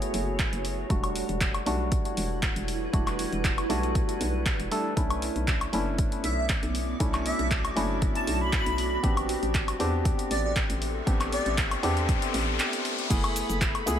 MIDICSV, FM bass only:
0, 0, Header, 1, 2, 480
1, 0, Start_track
1, 0, Tempo, 508475
1, 851, Time_signature, 4, 2, 24, 8
1, 13209, End_track
2, 0, Start_track
2, 0, Title_t, "FM bass"
2, 0, Program_c, 0, 39
2, 132, Note_on_c, 0, 30, 94
2, 437, Note_off_c, 0, 30, 0
2, 498, Note_on_c, 0, 30, 88
2, 796, Note_off_c, 0, 30, 0
2, 851, Note_on_c, 0, 28, 98
2, 1156, Note_off_c, 0, 28, 0
2, 1218, Note_on_c, 0, 28, 79
2, 1516, Note_off_c, 0, 28, 0
2, 1570, Note_on_c, 0, 35, 101
2, 1876, Note_off_c, 0, 35, 0
2, 2050, Note_on_c, 0, 28, 93
2, 2356, Note_off_c, 0, 28, 0
2, 2418, Note_on_c, 0, 28, 89
2, 2716, Note_off_c, 0, 28, 0
2, 2771, Note_on_c, 0, 28, 98
2, 3076, Note_off_c, 0, 28, 0
2, 3138, Note_on_c, 0, 28, 80
2, 3435, Note_off_c, 0, 28, 0
2, 3490, Note_on_c, 0, 35, 101
2, 3795, Note_off_c, 0, 35, 0
2, 3971, Note_on_c, 0, 35, 104
2, 4276, Note_off_c, 0, 35, 0
2, 4338, Note_on_c, 0, 28, 75
2, 4416, Note_off_c, 0, 28, 0
2, 4691, Note_on_c, 0, 35, 99
2, 4996, Note_off_c, 0, 35, 0
2, 5057, Note_on_c, 0, 35, 81
2, 5355, Note_off_c, 0, 35, 0
2, 5411, Note_on_c, 0, 30, 100
2, 5716, Note_off_c, 0, 30, 0
2, 5889, Note_on_c, 0, 35, 92
2, 6195, Note_off_c, 0, 35, 0
2, 6258, Note_on_c, 0, 35, 88
2, 6556, Note_off_c, 0, 35, 0
2, 6611, Note_on_c, 0, 35, 97
2, 6916, Note_off_c, 0, 35, 0
2, 6980, Note_on_c, 0, 35, 78
2, 7276, Note_off_c, 0, 35, 0
2, 7332, Note_on_c, 0, 30, 103
2, 7636, Note_off_c, 0, 30, 0
2, 7811, Note_on_c, 0, 35, 95
2, 8116, Note_off_c, 0, 35, 0
2, 8178, Note_on_c, 0, 35, 87
2, 8476, Note_off_c, 0, 35, 0
2, 8531, Note_on_c, 0, 33, 99
2, 8836, Note_off_c, 0, 33, 0
2, 8897, Note_on_c, 0, 33, 81
2, 9195, Note_off_c, 0, 33, 0
2, 9251, Note_on_c, 0, 40, 98
2, 9556, Note_off_c, 0, 40, 0
2, 9730, Note_on_c, 0, 33, 93
2, 10035, Note_off_c, 0, 33, 0
2, 10098, Note_on_c, 0, 33, 87
2, 10395, Note_off_c, 0, 33, 0
2, 10450, Note_on_c, 0, 33, 102
2, 10755, Note_off_c, 0, 33, 0
2, 10817, Note_on_c, 0, 33, 79
2, 11115, Note_off_c, 0, 33, 0
2, 11169, Note_on_c, 0, 40, 101
2, 11475, Note_off_c, 0, 40, 0
2, 11651, Note_on_c, 0, 33, 94
2, 11891, Note_off_c, 0, 33, 0
2, 12371, Note_on_c, 0, 30, 97
2, 12676, Note_off_c, 0, 30, 0
2, 12739, Note_on_c, 0, 30, 82
2, 13036, Note_off_c, 0, 30, 0
2, 13091, Note_on_c, 0, 37, 101
2, 13209, Note_off_c, 0, 37, 0
2, 13209, End_track
0, 0, End_of_file